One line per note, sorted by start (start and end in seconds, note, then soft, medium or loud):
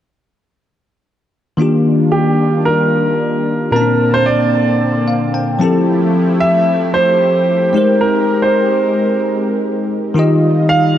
1.57 3.68 D#3 medium
1.57 3.71 D#3 medium
1.57 3.71 G3 medium
1.57 3.69 A#3 medium
1.57 3.71 D4 medium
1.57 3.69 D4 medium
1.57 3.71 F4 medium
1.57 3.70 F4 medium
1.62 3.71 G4 medium
2.12 2.62 G4 medium
2.65 3.71 A#4 medium
3.71 5.56 A#2 medium
3.71 5.58 D3 medium
3.71 5.56 A#3 medium
3.71 5.59 A#3 medium
3.71 5.59 C4 medium
3.71 5.57 C4 medium
3.71 3.81 C#4 soft
3.71 4.11 A#4 medium
3.71 5.59 A5 medium
3.76 5.58 A5 medium
3.81 5.61 D4 medium
4.14 4.27 C5 medium
4.26 5.29 D5 medium
5.08 5.32 F5 medium
5.34 5.59 G5 medium
5.59 7.70 F3 medium
5.59 7.72 F3 medium
5.59 7.72 A3 medium
5.59 7.70 C4 medium
5.59 7.72 E4 medium
5.59 7.71 E4 medium
5.59 10.12 G4 medium
5.59 7.72 G4 medium
5.59 5.86 A5 medium
5.64 7.72 A4 medium
6.40 6.96 E5 loud
6.94 8.04 C5 medium
7.73 9.84 G#3 medium
7.73 10.13 G#3 medium
7.73 10.13 C4 medium
7.73 9.85 D#4 medium
7.73 9.85 G4 medium
7.73 10.13 A#4 medium
7.73 9.86 A#4 medium
7.78 9.87 C5 medium
8.01 8.40 A#4 medium
8.42 9.19 C5 medium
10.14 10.98 D#3 medium
10.14 10.98 G3 medium
10.14 10.98 D#4 medium
10.14 10.98 F4 medium
10.14 10.98 G4 medium
10.14 10.98 D#5 medium
10.19 10.98 D#5 medium
10.69 10.98 F5 loud